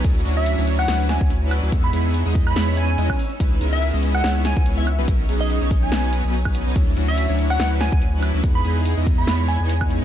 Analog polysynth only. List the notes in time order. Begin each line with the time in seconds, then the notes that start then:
0.04 C#4 D4 E4 A4
0.25 F#3 C#4 D4 E4 F#4
0.58 F#3 C#4 D4 E4 C#5
0.88 F#3 C#4 D4 E4 B4
1.21 F#3 C#4 D4 E4 B4
1.63 F#3 C#4 D4 E4 B4
1.72 G#3 B3 D#4 E4 B4
1.93 G#3 B3 D#4 E4 G#4
2.26 G#3 B3 D#4 E4 D#5
2.56 G#3 B3 D#4 E4 C#5
2.98 G#3 B3 D#4 E4 D#5
3.40 G#3 B3 C#4 E4 B4
3.61 G#3 B3 C#4 E4 A#4
3.94 G#3 B3 C#4 E4 D#5
4.24 G#3 B3 C#4 E4 C#5
4.57 B3 E4
4.99 F#3 B3 C#4 D#4 B4
5.29 F#3 B3 C#4 D#4 G#4
5.61 F#3 B3 C#4 D#4 C#5
5.92 F#3 B3 C#4 D#4 B4
6.24 F#3 B3 C#4 D#4 B4
6.66 F#3 B3 C#4 D#4 B4
6.76 F#3 C#4 D4 E4 A4
6.97 F#3 C#4 D4 E4 F#4
7.29 F#3 C#4 D4 E4 C#5
7.60 F#3 C#4 D4 E4 B4
7.92 F#3 C#4 D4 E4 B4
8.34 F#3 C#4 D4 E4 B4
8.44 G#3 B3 D#4 E4 B4
8.65 G#3 B3 D#4 E4 G#4
8.97 G#3 B3 D#4 E4 D#5
9.28 G#3 B3 D#4 E4 C#5
9.60 G#3 B3 D#4 E4 C#5